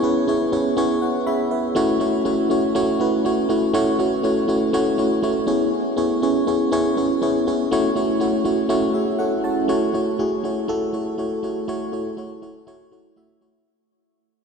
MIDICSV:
0, 0, Header, 1, 2, 480
1, 0, Start_track
1, 0, Tempo, 495868
1, 1705, Time_signature, 4, 2, 24, 8
1, 13980, End_track
2, 0, Start_track
2, 0, Title_t, "FM electric piano"
2, 0, Program_c, 0, 5
2, 0, Control_c, 0, 64, 127
2, 0, Note_on_c, 0, 59, 111
2, 0, Note_on_c, 0, 61, 110
2, 0, Note_on_c, 0, 64, 109
2, 0, Note_on_c, 0, 68, 103
2, 0, Note_on_c, 0, 73, 122
2, 25, Note_off_c, 0, 59, 0
2, 25, Note_on_c, 0, 59, 83
2, 28, Note_off_c, 0, 61, 0
2, 28, Note_on_c, 0, 61, 78
2, 31, Note_off_c, 0, 64, 0
2, 31, Note_on_c, 0, 64, 78
2, 33, Note_off_c, 0, 68, 0
2, 33, Note_on_c, 0, 68, 83
2, 37, Note_on_c, 0, 71, 97
2, 203, Note_off_c, 0, 59, 0
2, 204, Note_off_c, 0, 61, 0
2, 206, Note_off_c, 0, 64, 0
2, 207, Note_off_c, 0, 68, 0
2, 209, Note_off_c, 0, 71, 0
2, 265, Note_on_c, 0, 59, 86
2, 267, Note_on_c, 0, 61, 81
2, 270, Note_on_c, 0, 64, 78
2, 274, Note_on_c, 0, 68, 78
2, 279, Note_off_c, 0, 73, 0
2, 279, Note_on_c, 0, 73, 95
2, 443, Note_off_c, 0, 59, 0
2, 443, Note_off_c, 0, 61, 0
2, 445, Note_off_c, 0, 64, 0
2, 447, Note_off_c, 0, 68, 0
2, 450, Note_off_c, 0, 73, 0
2, 504, Note_on_c, 0, 59, 87
2, 505, Note_on_c, 0, 61, 81
2, 509, Note_on_c, 0, 68, 78
2, 510, Note_on_c, 0, 64, 79
2, 512, Note_on_c, 0, 73, 95
2, 682, Note_off_c, 0, 59, 0
2, 683, Note_off_c, 0, 61, 0
2, 685, Note_off_c, 0, 64, 0
2, 685, Note_off_c, 0, 68, 0
2, 686, Note_off_c, 0, 73, 0
2, 741, Note_on_c, 0, 59, 110
2, 744, Note_on_c, 0, 61, 96
2, 747, Note_on_c, 0, 64, 95
2, 752, Note_on_c, 0, 68, 100
2, 754, Note_on_c, 0, 73, 118
2, 921, Note_off_c, 0, 59, 0
2, 922, Note_off_c, 0, 61, 0
2, 923, Note_off_c, 0, 64, 0
2, 926, Note_off_c, 0, 68, 0
2, 927, Note_off_c, 0, 73, 0
2, 985, Note_on_c, 0, 78, 67
2, 1213, Note_off_c, 0, 78, 0
2, 1225, Note_on_c, 0, 83, 77
2, 1226, Note_on_c, 0, 76, 74
2, 1233, Note_on_c, 0, 68, 63
2, 1448, Note_off_c, 0, 83, 0
2, 1453, Note_off_c, 0, 76, 0
2, 1457, Note_off_c, 0, 68, 0
2, 1462, Note_on_c, 0, 71, 67
2, 1464, Note_on_c, 0, 76, 70
2, 1688, Note_off_c, 0, 76, 0
2, 1693, Note_on_c, 0, 57, 112
2, 1698, Note_on_c, 0, 61, 102
2, 1702, Note_on_c, 0, 64, 107
2, 1702, Note_on_c, 0, 66, 107
2, 1707, Note_on_c, 0, 73, 121
2, 1715, Control_c, 0, 64, 0
2, 1874, Control_c, 0, 64, 127
2, 1876, Note_off_c, 0, 57, 0
2, 1879, Note_off_c, 0, 61, 0
2, 1881, Note_off_c, 0, 64, 0
2, 1881, Note_off_c, 0, 66, 0
2, 1884, Note_off_c, 0, 73, 0
2, 1919, Note_off_c, 0, 71, 0
2, 1932, Note_on_c, 0, 57, 89
2, 1939, Note_on_c, 0, 61, 75
2, 1940, Note_on_c, 0, 64, 80
2, 1942, Note_on_c, 0, 66, 78
2, 1945, Note_on_c, 0, 73, 97
2, 2116, Note_off_c, 0, 57, 0
2, 2120, Note_off_c, 0, 61, 0
2, 2120, Note_off_c, 0, 64, 0
2, 2121, Note_off_c, 0, 66, 0
2, 2123, Note_off_c, 0, 73, 0
2, 2175, Note_on_c, 0, 57, 89
2, 2178, Note_on_c, 0, 61, 79
2, 2181, Note_on_c, 0, 64, 83
2, 2181, Note_on_c, 0, 66, 78
2, 2186, Note_on_c, 0, 73, 96
2, 2357, Note_off_c, 0, 57, 0
2, 2359, Note_off_c, 0, 61, 0
2, 2361, Note_off_c, 0, 64, 0
2, 2361, Note_off_c, 0, 66, 0
2, 2363, Note_off_c, 0, 73, 0
2, 2416, Note_on_c, 0, 57, 85
2, 2420, Note_on_c, 0, 61, 77
2, 2423, Note_on_c, 0, 64, 75
2, 2427, Note_on_c, 0, 66, 77
2, 2429, Note_on_c, 0, 73, 96
2, 2598, Note_off_c, 0, 57, 0
2, 2600, Note_off_c, 0, 61, 0
2, 2602, Note_off_c, 0, 64, 0
2, 2604, Note_off_c, 0, 66, 0
2, 2605, Note_off_c, 0, 73, 0
2, 2659, Note_on_c, 0, 57, 112
2, 2661, Note_on_c, 0, 61, 105
2, 2664, Note_on_c, 0, 64, 99
2, 2669, Note_on_c, 0, 66, 99
2, 2669, Note_on_c, 0, 73, 120
2, 2840, Note_off_c, 0, 57, 0
2, 2841, Note_off_c, 0, 61, 0
2, 2842, Note_off_c, 0, 64, 0
2, 2845, Note_off_c, 0, 66, 0
2, 2845, Note_off_c, 0, 73, 0
2, 2900, Note_on_c, 0, 61, 75
2, 2901, Note_on_c, 0, 57, 82
2, 2903, Note_on_c, 0, 64, 80
2, 2907, Note_on_c, 0, 66, 75
2, 2912, Note_on_c, 0, 71, 94
2, 3080, Note_off_c, 0, 57, 0
2, 3080, Note_off_c, 0, 61, 0
2, 3081, Note_off_c, 0, 64, 0
2, 3084, Note_off_c, 0, 66, 0
2, 3086, Note_off_c, 0, 71, 0
2, 3143, Note_on_c, 0, 61, 82
2, 3144, Note_on_c, 0, 57, 90
2, 3150, Note_on_c, 0, 64, 80
2, 3150, Note_on_c, 0, 66, 81
2, 3153, Note_on_c, 0, 73, 92
2, 3322, Note_off_c, 0, 57, 0
2, 3322, Note_off_c, 0, 61, 0
2, 3325, Note_off_c, 0, 64, 0
2, 3325, Note_off_c, 0, 66, 0
2, 3327, Note_off_c, 0, 73, 0
2, 3377, Note_on_c, 0, 57, 89
2, 3379, Note_on_c, 0, 61, 79
2, 3383, Note_on_c, 0, 64, 84
2, 3385, Note_on_c, 0, 66, 84
2, 3388, Note_on_c, 0, 73, 91
2, 3558, Note_off_c, 0, 57, 0
2, 3560, Note_off_c, 0, 61, 0
2, 3562, Note_off_c, 0, 64, 0
2, 3562, Note_off_c, 0, 66, 0
2, 3564, Note_off_c, 0, 73, 0
2, 3615, Note_on_c, 0, 57, 118
2, 3617, Note_on_c, 0, 61, 104
2, 3623, Note_on_c, 0, 64, 107
2, 3623, Note_on_c, 0, 66, 107
2, 3625, Note_on_c, 0, 73, 127
2, 3797, Note_off_c, 0, 57, 0
2, 3799, Note_off_c, 0, 61, 0
2, 3802, Note_off_c, 0, 64, 0
2, 3802, Note_off_c, 0, 66, 0
2, 3803, Note_off_c, 0, 73, 0
2, 3859, Note_on_c, 0, 57, 84
2, 3862, Note_on_c, 0, 61, 80
2, 3865, Note_on_c, 0, 64, 81
2, 3869, Note_on_c, 0, 66, 84
2, 3869, Note_on_c, 0, 73, 95
2, 4040, Note_off_c, 0, 57, 0
2, 4041, Note_off_c, 0, 61, 0
2, 4043, Note_off_c, 0, 64, 0
2, 4044, Note_off_c, 0, 66, 0
2, 4045, Note_off_c, 0, 73, 0
2, 4098, Note_on_c, 0, 57, 85
2, 4100, Note_on_c, 0, 61, 77
2, 4102, Note_on_c, 0, 64, 77
2, 4104, Note_on_c, 0, 66, 83
2, 4109, Note_on_c, 0, 73, 96
2, 4279, Note_off_c, 0, 57, 0
2, 4280, Note_off_c, 0, 61, 0
2, 4281, Note_off_c, 0, 64, 0
2, 4282, Note_off_c, 0, 66, 0
2, 4285, Note_off_c, 0, 73, 0
2, 4333, Note_on_c, 0, 57, 85
2, 4338, Note_on_c, 0, 61, 84
2, 4340, Note_on_c, 0, 64, 83
2, 4343, Note_on_c, 0, 66, 81
2, 4349, Note_on_c, 0, 73, 93
2, 4516, Note_off_c, 0, 57, 0
2, 4519, Note_off_c, 0, 61, 0
2, 4520, Note_off_c, 0, 64, 0
2, 4522, Note_off_c, 0, 66, 0
2, 4524, Note_off_c, 0, 73, 0
2, 4580, Note_on_c, 0, 57, 110
2, 4582, Note_on_c, 0, 61, 99
2, 4585, Note_on_c, 0, 64, 102
2, 4587, Note_on_c, 0, 66, 103
2, 4589, Note_on_c, 0, 73, 123
2, 4760, Note_off_c, 0, 57, 0
2, 4761, Note_off_c, 0, 61, 0
2, 4762, Note_off_c, 0, 64, 0
2, 4764, Note_off_c, 0, 66, 0
2, 4764, Note_off_c, 0, 73, 0
2, 4820, Note_on_c, 0, 57, 86
2, 4820, Note_on_c, 0, 61, 80
2, 4824, Note_on_c, 0, 64, 82
2, 4830, Note_on_c, 0, 66, 81
2, 4831, Note_on_c, 0, 73, 96
2, 5000, Note_off_c, 0, 57, 0
2, 5000, Note_off_c, 0, 61, 0
2, 5002, Note_off_c, 0, 64, 0
2, 5005, Note_off_c, 0, 66, 0
2, 5005, Note_off_c, 0, 73, 0
2, 5057, Note_on_c, 0, 57, 84
2, 5062, Note_on_c, 0, 61, 80
2, 5064, Note_on_c, 0, 66, 81
2, 5066, Note_on_c, 0, 64, 82
2, 5068, Note_on_c, 0, 73, 95
2, 5239, Note_off_c, 0, 57, 0
2, 5241, Note_off_c, 0, 61, 0
2, 5242, Note_off_c, 0, 66, 0
2, 5243, Note_off_c, 0, 64, 0
2, 5244, Note_off_c, 0, 73, 0
2, 5291, Note_on_c, 0, 59, 88
2, 5295, Note_on_c, 0, 61, 86
2, 5296, Note_on_c, 0, 64, 85
2, 5301, Note_on_c, 0, 73, 100
2, 5303, Note_on_c, 0, 68, 85
2, 5316, Control_c, 0, 64, 0
2, 5496, Control_c, 0, 64, 127
2, 5682, Note_off_c, 0, 59, 0
2, 5684, Note_off_c, 0, 61, 0
2, 5684, Note_off_c, 0, 64, 0
2, 5687, Note_off_c, 0, 73, 0
2, 5688, Note_off_c, 0, 68, 0
2, 5774, Note_on_c, 0, 59, 88
2, 5776, Note_on_c, 0, 61, 83
2, 5782, Note_on_c, 0, 64, 79
2, 5784, Note_on_c, 0, 68, 84
2, 5786, Note_on_c, 0, 73, 98
2, 5957, Note_off_c, 0, 59, 0
2, 5958, Note_off_c, 0, 61, 0
2, 5961, Note_off_c, 0, 64, 0
2, 5962, Note_off_c, 0, 68, 0
2, 5963, Note_off_c, 0, 73, 0
2, 6022, Note_on_c, 0, 59, 90
2, 6026, Note_on_c, 0, 61, 77
2, 6030, Note_on_c, 0, 64, 76
2, 6030, Note_on_c, 0, 68, 83
2, 6033, Note_on_c, 0, 73, 98
2, 6201, Note_off_c, 0, 59, 0
2, 6203, Note_off_c, 0, 61, 0
2, 6205, Note_off_c, 0, 64, 0
2, 6205, Note_off_c, 0, 68, 0
2, 6207, Note_off_c, 0, 73, 0
2, 6260, Note_on_c, 0, 59, 86
2, 6264, Note_on_c, 0, 61, 82
2, 6265, Note_on_c, 0, 64, 79
2, 6269, Note_on_c, 0, 68, 75
2, 6273, Note_on_c, 0, 73, 94
2, 6440, Note_off_c, 0, 59, 0
2, 6442, Note_off_c, 0, 61, 0
2, 6442, Note_off_c, 0, 64, 0
2, 6445, Note_off_c, 0, 68, 0
2, 6446, Note_off_c, 0, 73, 0
2, 6501, Note_on_c, 0, 59, 104
2, 6506, Note_on_c, 0, 61, 104
2, 6506, Note_on_c, 0, 64, 102
2, 6508, Note_on_c, 0, 68, 101
2, 6513, Note_on_c, 0, 73, 127
2, 6680, Note_off_c, 0, 59, 0
2, 6683, Note_off_c, 0, 61, 0
2, 6683, Note_off_c, 0, 64, 0
2, 6684, Note_off_c, 0, 68, 0
2, 6686, Note_off_c, 0, 73, 0
2, 6745, Note_on_c, 0, 59, 82
2, 6747, Note_on_c, 0, 61, 82
2, 6750, Note_on_c, 0, 64, 80
2, 6751, Note_on_c, 0, 68, 76
2, 6757, Note_on_c, 0, 73, 94
2, 6923, Note_off_c, 0, 59, 0
2, 6924, Note_off_c, 0, 61, 0
2, 6925, Note_off_c, 0, 64, 0
2, 6926, Note_off_c, 0, 68, 0
2, 6929, Note_off_c, 0, 73, 0
2, 6985, Note_on_c, 0, 59, 91
2, 6988, Note_on_c, 0, 61, 80
2, 6989, Note_on_c, 0, 64, 82
2, 6994, Note_on_c, 0, 68, 82
2, 6995, Note_on_c, 0, 73, 96
2, 7162, Note_off_c, 0, 59, 0
2, 7164, Note_off_c, 0, 61, 0
2, 7165, Note_off_c, 0, 64, 0
2, 7167, Note_off_c, 0, 68, 0
2, 7168, Note_off_c, 0, 73, 0
2, 7230, Note_on_c, 0, 59, 83
2, 7234, Note_on_c, 0, 61, 79
2, 7237, Note_on_c, 0, 64, 80
2, 7237, Note_on_c, 0, 68, 79
2, 7239, Note_on_c, 0, 73, 92
2, 7405, Note_off_c, 0, 59, 0
2, 7407, Note_off_c, 0, 61, 0
2, 7408, Note_off_c, 0, 68, 0
2, 7409, Note_off_c, 0, 64, 0
2, 7410, Note_off_c, 0, 73, 0
2, 7467, Note_on_c, 0, 57, 120
2, 7469, Note_on_c, 0, 61, 103
2, 7474, Control_c, 0, 64, 0
2, 7474, Note_on_c, 0, 64, 109
2, 7477, Note_on_c, 0, 66, 103
2, 7479, Note_on_c, 0, 73, 127
2, 7644, Note_off_c, 0, 57, 0
2, 7645, Note_off_c, 0, 61, 0
2, 7647, Note_off_c, 0, 64, 0
2, 7649, Note_off_c, 0, 66, 0
2, 7650, Note_off_c, 0, 73, 0
2, 7662, Control_c, 0, 64, 127
2, 7700, Note_on_c, 0, 57, 89
2, 7704, Note_on_c, 0, 61, 82
2, 7706, Note_on_c, 0, 66, 76
2, 7708, Note_on_c, 0, 64, 81
2, 7712, Note_on_c, 0, 73, 97
2, 7880, Note_off_c, 0, 57, 0
2, 7882, Note_off_c, 0, 61, 0
2, 7883, Note_off_c, 0, 66, 0
2, 7884, Note_off_c, 0, 64, 0
2, 7886, Note_off_c, 0, 73, 0
2, 7937, Note_on_c, 0, 57, 87
2, 7937, Note_on_c, 0, 61, 79
2, 7941, Note_on_c, 0, 64, 84
2, 7945, Note_on_c, 0, 66, 82
2, 7949, Note_on_c, 0, 73, 97
2, 8118, Note_off_c, 0, 57, 0
2, 8118, Note_off_c, 0, 61, 0
2, 8121, Note_off_c, 0, 64, 0
2, 8122, Note_off_c, 0, 66, 0
2, 8125, Note_off_c, 0, 73, 0
2, 8173, Note_on_c, 0, 57, 84
2, 8177, Note_on_c, 0, 61, 78
2, 8178, Note_on_c, 0, 64, 78
2, 8183, Note_on_c, 0, 66, 74
2, 8183, Note_on_c, 0, 73, 94
2, 8357, Note_off_c, 0, 57, 0
2, 8359, Note_off_c, 0, 61, 0
2, 8359, Note_off_c, 0, 64, 0
2, 8361, Note_off_c, 0, 66, 0
2, 8361, Note_off_c, 0, 73, 0
2, 8410, Note_on_c, 0, 57, 105
2, 8412, Note_on_c, 0, 61, 105
2, 8415, Note_on_c, 0, 64, 100
2, 8418, Note_on_c, 0, 66, 96
2, 8421, Note_on_c, 0, 73, 115
2, 8595, Note_off_c, 0, 57, 0
2, 8596, Note_off_c, 0, 61, 0
2, 8598, Note_off_c, 0, 64, 0
2, 8599, Note_off_c, 0, 66, 0
2, 8600, Note_off_c, 0, 73, 0
2, 8653, Note_on_c, 0, 76, 62
2, 8661, Note_on_c, 0, 68, 55
2, 8887, Note_off_c, 0, 76, 0
2, 8891, Note_off_c, 0, 68, 0
2, 8892, Note_on_c, 0, 78, 72
2, 8899, Note_on_c, 0, 69, 63
2, 9126, Note_off_c, 0, 78, 0
2, 9130, Note_off_c, 0, 69, 0
2, 9138, Note_on_c, 0, 81, 69
2, 9144, Note_on_c, 0, 73, 59
2, 9371, Note_off_c, 0, 73, 0
2, 9371, Note_on_c, 0, 57, 104
2, 9379, Note_on_c, 0, 64, 93
2, 9380, Note_on_c, 0, 66, 93
2, 9383, Note_on_c, 0, 73, 109
2, 9398, Control_c, 0, 64, 0
2, 9545, Control_c, 0, 64, 127
2, 9555, Note_off_c, 0, 57, 0
2, 9560, Note_off_c, 0, 64, 0
2, 9560, Note_off_c, 0, 66, 0
2, 9562, Note_off_c, 0, 73, 0
2, 9597, Note_off_c, 0, 81, 0
2, 9618, Note_on_c, 0, 57, 76
2, 9624, Note_on_c, 0, 64, 75
2, 9626, Note_on_c, 0, 66, 72
2, 9629, Note_on_c, 0, 73, 87
2, 9799, Note_off_c, 0, 57, 0
2, 9802, Note_off_c, 0, 64, 0
2, 9803, Note_off_c, 0, 66, 0
2, 9805, Note_off_c, 0, 73, 0
2, 9862, Note_on_c, 0, 57, 78
2, 9865, Note_on_c, 0, 64, 72
2, 9868, Note_on_c, 0, 66, 74
2, 9871, Note_on_c, 0, 68, 88
2, 10041, Note_off_c, 0, 57, 0
2, 10043, Note_off_c, 0, 64, 0
2, 10044, Note_off_c, 0, 66, 0
2, 10045, Note_off_c, 0, 68, 0
2, 10100, Note_on_c, 0, 57, 76
2, 10105, Note_on_c, 0, 64, 70
2, 10110, Note_on_c, 0, 66, 73
2, 10115, Note_on_c, 0, 73, 85
2, 10280, Note_off_c, 0, 57, 0
2, 10282, Note_off_c, 0, 64, 0
2, 10285, Note_off_c, 0, 66, 0
2, 10288, Note_off_c, 0, 73, 0
2, 10339, Note_on_c, 0, 57, 96
2, 10341, Note_on_c, 0, 64, 93
2, 10347, Note_on_c, 0, 66, 90
2, 10350, Note_on_c, 0, 69, 112
2, 10520, Note_off_c, 0, 57, 0
2, 10521, Note_off_c, 0, 64, 0
2, 10524, Note_off_c, 0, 66, 0
2, 10525, Note_off_c, 0, 69, 0
2, 10579, Note_on_c, 0, 57, 74
2, 10583, Note_on_c, 0, 64, 72
2, 10587, Note_on_c, 0, 66, 66
2, 10591, Note_on_c, 0, 73, 86
2, 10759, Note_off_c, 0, 57, 0
2, 10761, Note_off_c, 0, 64, 0
2, 10764, Note_off_c, 0, 66, 0
2, 10766, Note_off_c, 0, 73, 0
2, 10819, Note_on_c, 0, 57, 76
2, 10823, Note_on_c, 0, 64, 70
2, 10826, Note_on_c, 0, 66, 71
2, 10833, Note_on_c, 0, 73, 90
2, 11000, Note_off_c, 0, 57, 0
2, 11002, Note_off_c, 0, 64, 0
2, 11003, Note_off_c, 0, 66, 0
2, 11007, Note_off_c, 0, 73, 0
2, 11061, Note_on_c, 0, 57, 80
2, 11064, Note_on_c, 0, 64, 73
2, 11069, Note_on_c, 0, 66, 71
2, 11074, Note_on_c, 0, 73, 84
2, 11241, Note_off_c, 0, 57, 0
2, 11242, Note_off_c, 0, 64, 0
2, 11245, Note_off_c, 0, 66, 0
2, 11247, Note_off_c, 0, 73, 0
2, 11303, Note_on_c, 0, 57, 99
2, 11307, Note_on_c, 0, 64, 92
2, 11310, Note_on_c, 0, 66, 96
2, 11315, Note_on_c, 0, 73, 118
2, 11482, Note_off_c, 0, 57, 0
2, 11483, Note_off_c, 0, 64, 0
2, 11485, Note_off_c, 0, 66, 0
2, 11488, Note_off_c, 0, 73, 0
2, 11541, Note_on_c, 0, 57, 74
2, 11546, Note_on_c, 0, 64, 73
2, 11548, Note_on_c, 0, 66, 71
2, 11553, Note_on_c, 0, 73, 86
2, 11721, Note_off_c, 0, 57, 0
2, 11723, Note_off_c, 0, 64, 0
2, 11724, Note_off_c, 0, 66, 0
2, 11726, Note_off_c, 0, 73, 0
2, 11779, Note_on_c, 0, 57, 75
2, 11781, Note_on_c, 0, 64, 71
2, 11787, Note_on_c, 0, 66, 66
2, 11791, Note_on_c, 0, 73, 78
2, 11960, Note_off_c, 0, 57, 0
2, 11960, Note_off_c, 0, 64, 0
2, 11964, Note_off_c, 0, 66, 0
2, 11966, Note_off_c, 0, 73, 0
2, 12022, Note_on_c, 0, 57, 75
2, 12024, Note_on_c, 0, 64, 66
2, 12029, Note_on_c, 0, 66, 68
2, 12031, Note_on_c, 0, 73, 81
2, 12201, Note_off_c, 0, 57, 0
2, 12202, Note_off_c, 0, 64, 0
2, 12204, Note_off_c, 0, 66, 0
2, 12206, Note_off_c, 0, 73, 0
2, 12262, Note_on_c, 0, 64, 85
2, 12263, Note_on_c, 0, 57, 92
2, 12270, Note_on_c, 0, 66, 86
2, 12273, Note_on_c, 0, 73, 107
2, 12441, Note_off_c, 0, 57, 0
2, 12441, Note_off_c, 0, 64, 0
2, 12445, Note_off_c, 0, 66, 0
2, 12446, Note_off_c, 0, 73, 0
2, 12501, Note_on_c, 0, 57, 71
2, 12508, Note_on_c, 0, 64, 62
2, 12510, Note_on_c, 0, 66, 64
2, 12516, Note_on_c, 0, 73, 78
2, 12681, Note_off_c, 0, 57, 0
2, 12684, Note_off_c, 0, 64, 0
2, 12685, Note_off_c, 0, 66, 0
2, 12688, Note_off_c, 0, 73, 0
2, 12741, Note_on_c, 0, 57, 70
2, 12743, Note_on_c, 0, 64, 69
2, 12747, Note_on_c, 0, 66, 67
2, 12752, Note_on_c, 0, 76, 83
2, 12920, Note_off_c, 0, 57, 0
2, 12921, Note_off_c, 0, 64, 0
2, 12924, Note_off_c, 0, 66, 0
2, 12926, Note_off_c, 0, 76, 0
2, 12981, Note_on_c, 0, 57, 72
2, 12985, Note_on_c, 0, 64, 65
2, 12990, Note_on_c, 0, 66, 64
2, 12991, Note_on_c, 0, 73, 78
2, 13161, Note_off_c, 0, 57, 0
2, 13163, Note_off_c, 0, 64, 0
2, 13165, Note_off_c, 0, 66, 0
2, 13165, Note_off_c, 0, 73, 0
2, 13238, Control_c, 0, 64, 0
2, 13980, End_track
0, 0, End_of_file